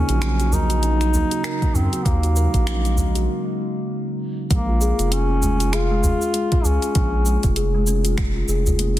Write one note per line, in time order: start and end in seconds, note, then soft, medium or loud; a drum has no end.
0.00 4.47 C#3 medium
0.00 4.46 F#3 medium
0.00 2.03 A#3 medium
0.00 0.55 C#4 loud
0.00 4.46 D#4 medium
0.09 1.25 A#1 medium
0.09 0.21 F#4 medium
0.09 closed hi-hat soft
0.09 shaker soft
0.22 0.38 A#3 medium
0.22 finger snap medium
0.22 closed hi-hat medium
0.22 shaker soft
0.40 0.52 F#4 medium
0.40 closed hi-hat soft
0.40 shaker soft
0.52 1.77 D#4 loud
0.52 0.70 A#4 medium
0.52 udu medium
0.52 shaker medium
0.70 0.83 F#4 medium
0.70 closed hi-hat soft
0.70 shaker soft
0.83 1.00 C#4 medium
0.83 closed hi-hat medium
0.83 shaker soft
1.01 1.13 D#4 medium
1.01 finger snap soft
1.01 closed hi-hat soft
1.01 shaker soft
1.14 1.31 A#3 medium
1.14 udu medium
1.14 shaker medium
1.31 1.39 F#4 medium
1.31 closed hi-hat soft
1.31 shaker soft
1.44 1.55 A#4 loud
1.44 finger snap loud
1.44 closed hi-hat medium
1.44 shaker soft
1.62 1.74 A#3 loud
1.62 kick medium
1.62 closed hi-hat soft
1.62 shaker soft
1.75 1.89 F#2 medium
1.75 2.07 C4 medium
1.75 1.92 D#4 loud
1.75 udu medium
1.75 shaker medium
1.93 2.05 F#4 medium
1.93 closed hi-hat soft
1.93 shaker soft
2.05 2.47 D#2 loud
2.05 4.48 G#3 medium
2.05 3.28 A#3 medium
2.05 2.22 A#3 medium
2.05 kick loud
2.05 closed hi-hat medium
2.05 shaker soft
2.23 2.36 F#4 medium
2.23 closed hi-hat soft
2.23 shaker soft
2.36 2.53 A#4 medium
2.36 shaker medium
2.54 3.28 A#1 medium
2.54 2.66 F#4 medium
2.54 kick medium
2.54 closed hi-hat soft
2.54 shaker soft
2.67 2.84 C#4 medium
2.67 finger snap loud
2.67 closed hi-hat medium
2.67 shaker soft
2.85 2.96 D#4 medium
2.85 closed hi-hat soft
2.85 shaker soft
2.97 3.15 A#3 medium
2.97 udu medium
2.97 shaker medium
3.15 3.23 F#4 medium
3.15 closed hi-hat soft
3.15 shaker soft
4.51 4.93 A#1 loud
4.51 4.67 G#3 medium
4.51 5.14 A#3 medium
4.51 kick loud
4.51 closed hi-hat medium
4.51 shaker soft
4.69 4.81 F4 medium
4.81 4.98 G#4 medium
4.81 shaker medium
4.99 6.15 F1 medium
4.99 5.11 F4 medium
4.99 closed hi-hat soft
4.99 shaker soft
5.12 5.29 A#3 medium
5.12 5.75 C#4 loud
5.12 closed hi-hat medium
5.12 shaker soft
5.30 5.41 C#4 medium
5.43 5.60 G#3 medium
5.43 udu medium
5.43 shaker medium
5.60 5.68 F4 medium
5.60 closed hi-hat soft
5.60 shaker soft
5.73 6.66 F4 loud
5.73 5.83 G#4 medium
5.73 finger snap medium
5.73 closed hi-hat medium
5.73 shaker soft
5.91 6.02 G#3 loud
6.03 6.20 C#4 loud
6.03 udu loud
6.03 shaker medium
6.22 6.33 F4 medium
6.22 shaker soft
6.34 6.50 G#3 medium
6.34 closed hi-hat medium
6.34 shaker soft
6.52 6.64 F4 medium
6.52 kick loud
6.52 closed hi-hat soft
6.65 6.79 C#2 medium
6.65 7.57 C#4 medium
6.65 6.82 G#4 medium
6.65 udu medium
6.65 shaker medium
6.82 6.95 F4 medium
6.82 closed hi-hat soft
6.82 shaker soft
6.95 7.37 A#1 medium
6.95 kick loud
6.95 closed hi-hat medium
6.95 shaker soft
7.13 7.25 C#4 medium
7.26 7.43 G#3 medium
7.26 shaker medium
7.43 8.44 F1 medium
7.43 7.51 F4 medium
7.43 kick medium
7.43 closed hi-hat soft
7.43 shaker soft
7.56 7.67 G#4 medium
7.56 closed hi-hat medium
7.56 shaker soft
7.74 7.86 G#3 medium
7.87 8.04 C#4 loud
7.87 shaker medium
8.05 8.17 F4 medium
8.05 closed hi-hat soft
8.05 shaker soft
8.18 8.34 G#3 medium
8.18 finger snap medium
8.18 kick loud
8.18 closed hi-hat medium
8.18 shaker soft
8.36 8.48 F4 medium
8.48 8.99 F1 loud
8.48 8.66 G#4 medium
8.48 shaker medium
8.66 8.79 F4 medium
8.66 udu medium
8.66 shaker soft
8.79 8.96 A#3 medium
8.79 closed hi-hat medium
8.79 shaker soft